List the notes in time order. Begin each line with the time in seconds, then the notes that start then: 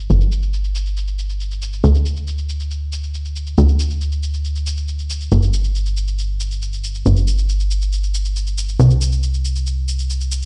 0.10 G1, shaker
0.21 shaker
0.32 shaker
0.43 shaker
0.53 shaker
0.64 shaker
0.75 shaker
0.86 shaker
0.97 shaker
1.08 shaker
1.19 shaker
1.30 shaker
1.40 shaker
1.51 shaker
1.62 shaker
1.73 shaker
1.84 D2, shaker
1.95 shaker
2.06 shaker
2.16 shaker
2.27 shaker
2.38 shaker
2.49 shaker
2.60 shaker
2.71 shaker
2.92 shaker
3.03 shaker
3.14 shaker
3.25 shaker
3.36 shaker
3.47 shaker
3.58 D2, shaker
3.69 shaker
3.79 shaker
3.90 shaker
4.01 shaker
4.12 shaker
4.23 shaker
4.34 shaker
4.45 shaker
4.56 shaker
4.66 shaker
4.77 shaker
4.88 shaker
4.99 shaker
5.10 shaker
5.21 shaker
5.32 G1, shaker
5.43 shaker
5.53 shaker
5.64 shaker
5.75 shaker
5.86 shaker
5.97 shaker
6.08 shaker
6.19 shaker
6.40 shaker
6.51 shaker
6.62 shaker
6.73 shaker
6.84 shaker
6.95 shaker
7.06 G1, shaker
7.16 shaker
7.27 shaker
7.38 shaker
7.49 shaker
7.60 shaker
7.71 shaker
7.82 shaker
7.93 shaker
8.03 shaker
8.14 shaker
8.25 shaker
8.36 shaker
8.47 shaker
8.58 shaker
8.69 shaker
8.79 C2, shaker
8.90 shaker
9.01 shaker
9.12 shaker
9.23 shaker
9.34 shaker
9.45 shaker
9.56 shaker
9.67 shaker
9.88 shaker
9.99 shaker
10.10 shaker
10.21 shaker
10.32 shaker